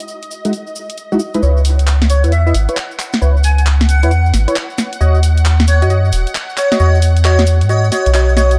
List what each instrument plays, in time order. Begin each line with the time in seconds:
Already playing: string machine D#5
0.00 closed hi-hat
0.08 cabasa
0.22 closed hi-hat, cabasa
0.31 cabasa
0.45 synth stab G#3 D#4 E4 F#4, closed hi-hat, cabasa
0.53 closed hi-hat, cabasa
0.67 cabasa
0.76 cabasa
0.90 closed hi-hat, cabasa
0.98 closed hi-hat, cabasa
1.12 synth stab G#3 D#4 E4 F#4, cabasa
1.19 cabasa
1.34 synth stab G#3 D#4 E4 B4, closed hi-hat, cabasa
1.42 sub bass C#2, synth stab E4 B4 C#5, string machine F#5, cabasa
1.57 cabasa
1.65 open hi-hat, cabasa
1.79 closed hi-hat, cabasa
1.87 clap, cabasa
2.02 snare, closed hi-hat, cabasa
2.10 digital synth lead C#5, open hi-hat, cabasa
2.24 sub bass E2, synth stab E4 B4 C#5, closed hi-hat, cabasa
2.32 digital synth lead E5, closed hi-hat, cabasa
2.46 synth stab E4 B4 D#5, digital synth lead E5, cabasa
2.54 sub bass G#1, open hi-hat, cabasa
2.69 synth stab E4 B4 C#5, closed hi-hat, cabasa
2.77 clap, closed hi-hat, cabasa
2.91 cabasa
2.99 clap, open hi-hat, cabasa
3.13 snare, closed hi-hat, cabasa
3.22 sub bass C#2, synth stab E4 B4 C#5, cabasa
3.37 cabasa
3.43 digital synth lead G#5, open hi-hat, cabasa
3.58 digital synth lead G#5, closed hi-hat, cabasa
3.66 clap, cabasa
3.81 snare, closed hi-hat, cabasa
3.89 digital synth lead F#5, open hi-hat, cabasa
4.03 sub bass E2, synth stab E4 B4 C#5, closed hi-hat, cabasa
4.11 closed hi-hat, cabasa
4.26 cabasa
4.34 sub bass G#1, snare, open hi-hat, cabasa
4.48 synth stab E4 B4 C#5, closed hi-hat, cabasa
4.56 clap, closed hi-hat, cabasa
4.70 cabasa
4.78 snare, open hi-hat, cabasa
4.93 closed hi-hat, cabasa
5.01 sub bass D#2, synth stab F#4 C#5 D#5, cabasa
5.15 cabasa
5.23 open hi-hat, cabasa
5.37 closed hi-hat, cabasa
5.45 clap, cabasa
5.60 snare, closed hi-hat, cabasa
5.68 digital synth lead C#5, open hi-hat, cabasa
5.82 sub bass F#2, synth stab F#4 C#5 D#5, closed hi-hat, cabasa
5.90 synth stab F#4 C#5 D#5, closed hi-hat, cabasa
6.05 cabasa
6.12 sub bass D#1, open hi-hat, cabasa
6.27 closed hi-hat, cabasa
6.35 clap, closed hi-hat, cabasa
6.50 cabasa
6.57 digital synth lead C#5, clap, open hi-hat, cabasa
6.72 synth stab F#4 C#5 D#5, snare, closed hi-hat, cabasa
6.80 sub bass E2, synth stab F#4 C#5 D#5, digital synth lead C#5, cabasa
6.95 cabasa
7.02 open hi-hat, cabasa
7.17 closed hi-hat, cabasa
7.25 synth stab F#4 C#5 D#5, digital synth lead C#5, clap, cabasa
7.39 snare, closed hi-hat, cabasa
7.47 open hi-hat, cabasa
7.61 sub bass G#2, closed hi-hat, cabasa
7.69 synth stab F#4 C#5 D#5, digital synth lead C#5, closed hi-hat, cabasa
7.84 cabasa
7.92 synth stab F#4 C#5 D#5, digital synth lead C#5, snare, open hi-hat, cabasa
8.06 sub bass B1, closed hi-hat, cabasa
8.14 synth stab F#4 C#5 D#5, digital synth lead C#5, clap, closed hi-hat, cabasa
8.29 cabasa
8.37 synth stab F#4 C#5 D#5, digital synth lead C#5, snare, open hi-hat, cabasa
8.51 closed hi-hat, cabasa